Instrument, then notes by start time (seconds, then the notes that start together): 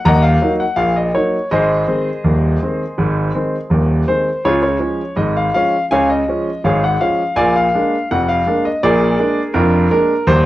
grand piano
0.05 D#1 D#2 D#5 F#5 A#5
0.23 F5
0.42 F#3 A#3 D#4
0.60 F#5
0.76 A#1 A#2 F5
0.97 D#5
1.15 F#3 A#3 D#4 C#5
1.51 G#1 G#2 G#4 C5 D#5
1.88 D#3 G#3 C4
2.24 D#1 D#2
2.63 D#3 G#3 C4
2.98 G#1 G#2
3.34 D#3 G#3 C4
3.70 D#1 D#2
4.08 D#3 G#3 C4 C5
4.45 C#2 C#3 F4 G#4 C#5
4.63 C#5
4.79 F3 G#3 C#4
5.16 G#1 G#2 D#5
5.37 F5
5.54 F3 G#3 C#4 F5
5.91 C#2 C#3 C#5 F5 G#5
6.09 D#5
6.28 F3 G#3 C#4
6.64 G#1 G#2 G#4 C#5 F5
6.84 F#5
7.00 F3 G#3 C#4 F5
7.36 A#1 A#2 D5 F5 G#5
7.56 F5
7.74 G#3 A#3 D4
8.11 F1 F2 F#5
8.29 F5
8.46 G#3 A#3 D4
8.65 D#5
8.83 A#1 A#2 G#4 A#4 D5
9.19 G#3 A#3 D4
9.54 F1 F2 D4 F4 A#4
9.91 G#3 A#3 D4 A#4
10.27 D#1 D#2 C5